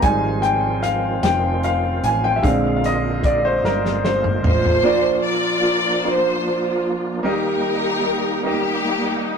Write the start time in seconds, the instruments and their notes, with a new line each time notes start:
0.02 fingered electric bass G#1, tonewheel organ D#3 F3 C4 F4, grand piano G3 G#3 D#4 G#5, kick, closed hi-hat
0.42 grand piano G5, closed hi-hat
0.83 grand piano F5, closed hi-hat
1.23 fingered electric bass F1, grand piano G5, snare, closed hi-hat
1.63 grand piano F5, closed hi-hat
2.03 fingered electric bass A1, grand piano G#5, closed hi-hat
2.24 grand piano G5
2.36 grand piano E5
2.42 fingered electric bass A#1, grand piano D3 G#3 C4 F5, tonewheel organ D3 G#3 A#3 F4, kick, closed hi-hat
2.76 grand piano F5
2.84 grand piano D#5, closed hi-hat
3.24 grand piano D5, kick, closed hi-hat
3.45 grand piano C5
3.63 fingered electric bass G1, grand piano A#4, snare
3.85 snare
4.05 grand piano C5, snare
4.24 mid tom
4.43 fingered electric bass A1, string section F4, floor tom
4.48 string section C5
4.65 floor tom
4.83 grand piano A#2 A#3 D4 F4 A#4 D5, tonewheel organ F3 A#3 D4
5.26 string section F4 A#4 D5
6.04 grand piano A#3 D4 F4 A#4 D5, string section F4 C5
7.23 grand piano D#3 A#3 D#4 G4 A#4 D#5, tonewheel organ G3 A#3 D#4, string section D#4 G4 A#4
8.43 grand piano A#3 D#4 G4 A#4 D#5, string section G4
8.47 string section A#3 D#4